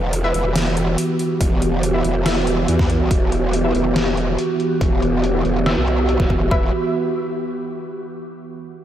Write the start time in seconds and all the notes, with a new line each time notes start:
Already playing: E1 E3 B3 F#4 G4
0.13 closed hi-hat
0.24 E4 B4 E5
0.34 E1, closed hi-hat
0.56 snare, closed hi-hat
0.77 closed hi-hat
0.98 closed hi-hat
1.19 closed hi-hat
1.41 E1, kick, closed hi-hat
1.62 closed hi-hat
1.83 closed hi-hat
1.94 E4 B4 E5
2.04 E1, closed hi-hat
2.26 E4 B4 E5, snare, closed hi-hat
2.47 closed hi-hat
2.68 E2, closed hi-hat
2.79 kick, snare
2.90 closed hi-hat
3.11 E1, kick, closed hi-hat
3.32 closed hi-hat
3.53 closed hi-hat
3.64 E4 B4 E5
3.75 E1, closed hi-hat
3.96 snare, closed hi-hat
4.17 closed hi-hat
4.39 closed hi-hat
4.60 closed hi-hat
4.81 E1, kick, closed hi-hat
5.02 closed hi-hat
5.24 closed hi-hat
5.35 E4 B4 E5
5.45 E1, closed hi-hat
5.66 E4 B4 E5, snare, closed hi-hat
5.77 B1
5.88 closed hi-hat
6.09 closed hi-hat
6.20 E1, kick, snare
6.30 kick, closed hi-hat
6.51 E1 E4 B4 E5, kick